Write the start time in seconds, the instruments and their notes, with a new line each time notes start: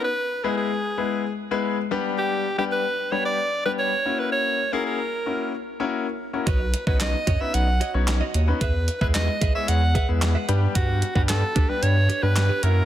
0.04 alto saxophone B4
0.44 grand piano G#3 B3 E4 G#4 B4, alto saxophone G#4
0.57 alto saxophone G#4
0.97 grand piano G#3 B3 E4 G#4 B4
1.51 grand piano G#3 B3 E4 G#4 B4
1.91 grand piano G3 B3 D4 G4 B4
2.18 alto saxophone G4
2.58 grand piano G3 B3 D4 G4 B4, alto saxophone G4
2.72 alto saxophone B4
3.12 grand piano G3 B3 D4 G4 B4, alto saxophone C#5
3.25 alto saxophone D5
3.65 grand piano G3 B3 D4 G4 B4, alto saxophone B4
3.79 alto saxophone C#5
4.05 grand piano A#3 C#4 E4 F#4 A#4
4.19 alto saxophone B4
4.33 alto saxophone C#5
4.72 grand piano A#3 C#4 E4 F#4 G#4, alto saxophone A#4
4.86 alto saxophone A#4
5.26 grand piano A#3 C#4 E4 F#4 A#4
5.80 grand piano A#3 C#4 E4 F#4 A#4
6.33 grand piano A#3 C#4 E4 F#4 A#4
6.47 sub bass B1, clean electric guitar F#4 C#5 D#5, alto saxophone B4, kick, closed hi-hat
6.60 muted clean electric guitar stroke
6.74 muted clean electric guitar stroke, closed hi-hat
6.87 sub bass B1, grand piano B3 C#4 D#4 F#4 B4, clean electric guitar F#4 C#5 D#5, alto saxophone B4, kick
7.00 alto saxophone D#5, snare, clap, closed hi-hat
7.14 muted clean electric guitar stroke
7.27 sub bass F#2, clean electric guitar F#4 C#5 D#5, kick, closed hi-hat
7.40 grand piano B3 C#4 D#4 F#4 B4, alto saxophone E5, muted clean electric guitar stroke
7.54 sub bass B1, alto saxophone F#5, muted clean electric guitar stroke, closed hi-hat
7.67 muted clean electric guitar stroke
7.80 clean electric guitar F#4 C#5 D#5, closed hi-hat
7.94 sub bass B1, grand piano B3 C#4 D#4 F#4 C#5, muted clean electric guitar stroke
8.07 muted clean electric guitar stroke, snare, clap, closed hi-hat
8.21 clean electric guitar F#4 C#5 D#5
8.34 sub bass D#2, clean electric guitar F#4 C#5 D#5, closed hi-hat
8.48 grand piano B3 C#4 D#4 F#4 B4, muted clean electric guitar stroke
8.61 sub bass E2, clean electric guitar G#4 B4 E5, alto saxophone B4, kick, closed hi-hat
8.74 muted clean electric guitar stroke
8.88 muted clean electric guitar stroke, closed hi-hat
9.01 sub bass E2, grand piano G#3 B3 E4 G#4 B4, clean electric guitar G#4 B4 E5, alto saxophone B4, kick
9.14 alto saxophone D#5, muted clean electric guitar stroke, snare, clap, closed hi-hat
9.28 muted clean electric guitar stroke
9.41 sub bass B1, clean electric guitar G#4 B4 E5, kick, closed hi-hat
9.55 grand piano G#3 B3 E4 G#4 C#5, alto saxophone E5, muted clean electric guitar stroke
9.68 sub bass E2, alto saxophone F#5, muted clean electric guitar stroke, closed hi-hat
9.82 muted clean electric guitar stroke
9.95 clean electric guitar G#4 B4 E5, kick, closed hi-hat
10.08 sub bass E2, grand piano G#3 B3 E4 G#4 B4, muted clean electric guitar stroke
10.22 muted clean electric guitar stroke, snare, clap, closed hi-hat
10.35 clean electric guitar G#4 B4 E5
10.48 sub bass G2, grand piano G3 B3 D4 G4 B4, clean electric guitar D4 G4 B4, closed hi-hat
10.62 muted clean electric guitar stroke
10.75 sub bass G2, clean electric guitar D4 G4 B4, alto saxophone F#4, kick, closed hi-hat
10.88 muted clean electric guitar stroke
11.02 muted clean electric guitar stroke, closed hi-hat
11.15 sub bass G2, grand piano G3 B3 D4 G4 B4, clean electric guitar D4 G4 B4, alto saxophone F#4, kick
11.29 alto saxophone A4, muted clean electric guitar stroke, snare, clap, closed hi-hat
11.42 muted clean electric guitar stroke
11.55 sub bass D2, clean electric guitar D4 G4 B4, kick, closed hi-hat
11.69 grand piano G3 B3 D4 G4 B4, alto saxophone B4, muted clean electric guitar stroke
11.82 sub bass G2, alto saxophone C#5, muted clean electric guitar stroke, closed hi-hat
11.96 muted clean electric guitar stroke
12.09 clean electric guitar D4 G4 B4, closed hi-hat
12.22 sub bass G2, grand piano G3 B3 D4 G4 B4, alto saxophone B4, muted clean electric guitar stroke
12.36 muted clean electric guitar stroke, snare, clap, closed hi-hat
12.49 clean electric guitar D4 G4 B4
12.63 sub bass F#2, grand piano A#3 C#4 E4 F#4 A#4, clean electric guitar F#4 A#4 E5, alto saxophone A#4, closed hi-hat
12.76 muted clean electric guitar stroke